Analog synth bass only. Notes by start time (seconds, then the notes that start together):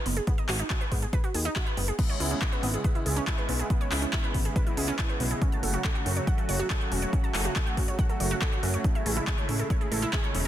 0.06 F#1
0.49 G#1
0.92 G#2
1.34 D#2
1.77 F#1
2.20 C#2
2.63 G#1
3.06 C#2
3.49 B1
3.92 C#2
4.34 G#1
4.77 C#2
5.20 B1
5.63 F#1
6.06 F#2
6.49 F#1
6.92 E1
7.34 F#1
7.77 F#2
8.20 F#1
8.63 F#2
9.06 A1
9.49 A2
9.92 A1
10.34 E1